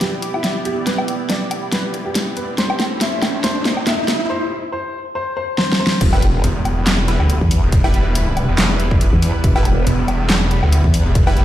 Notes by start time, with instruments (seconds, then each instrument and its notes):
Already playing: analog synth pad B3 E4 G4 D5, riser
0.01 grand piano G4, snare, closed hi-hat
0.22 closed hi-hat
0.34 grand piano E4, low woodblock
0.44 snare, closed hi-hat
0.65 grand piano G4, closed hi-hat
0.87 grand piano B4, snare, closed hi-hat
0.98 low woodblock
1.08 closed hi-hat
1.30 grand piano D5, snare, closed hi-hat
1.51 closed hi-hat, low woodblock
1.72 grand piano B4, snare, closed hi-hat
1.94 closed hi-hat
2.06 grand piano G4
2.15 snare, closed hi-hat
2.37 grand piano B4, closed hi-hat
2.58 analog synth pad A3 E4 C5, grand piano C5, snare, closed hi-hat
2.70 low woodblock
2.80 snare, closed hi-hat
3.01 grand piano E5, snare, closed hi-hat
3.22 snare, closed hi-hat, low woodblock
3.44 grand piano C5, snare, closed hi-hat
3.65 snare, closed hi-hat
3.77 low woodblock
3.87 grand piano E5, snare, closed hi-hat
4.08 snare, closed hi-hat
4.30 grand piano C5
4.72 grand piano C5
5.15 grand piano C5
5.37 grand piano C5
5.58 grand piano C5, snare
5.72 snare
5.80 grand piano C5
5.87 snare
6.01 wobble bass E1, analog synth pad G3 B3 E4 B4, kick, closed hi-hat, crash, impact
6.13 supersaw synth G3 E4 B4, low woodblock
6.22 closed hi-hat
6.44 detuned saw bass E1, closed hi-hat
6.56 detuned saw bass E1
6.65 closed hi-hat, low woodblock
6.87 snare, clap, closed hi-hat
7.08 supersaw synth G3 E4 B4, closed hi-hat
7.20 detuned saw bass D2, low woodblock
7.30 closed hi-hat
7.41 wobble bass E2, kick
7.51 open hi-hat
7.63 detuned saw bass E1
7.72 kick, closed hi-hat
7.84 supersaw synth G3 E4 B4, low woodblock
7.94 closed hi-hat
8.15 closed hi-hat
8.37 closed hi-hat, low woodblock
8.49 detuned saw bass E1
8.58 snare, clap, closed hi-hat
8.80 closed hi-hat
8.91 kick
9.01 closed hi-hat
9.13 wobble bass E2
9.22 open hi-hat
9.44 wobble bass E1, kick, closed hi-hat
9.56 supersaw synth G3 E4 B4, low woodblock
9.65 closed hi-hat
9.87 detuned saw bass E1, closed hi-hat
9.98 detuned saw bass E1
10.08 closed hi-hat, low woodblock
10.30 snare, clap, closed hi-hat
10.51 closed hi-hat
10.63 detuned saw bass D2, low woodblock
10.72 closed hi-hat
10.84 wobble bass E2, kick
10.94 open hi-hat
11.06 detuned saw bass E1
11.15 kick, closed hi-hat
11.27 supersaw synth G3 E4 B4, low woodblock
11.37 closed hi-hat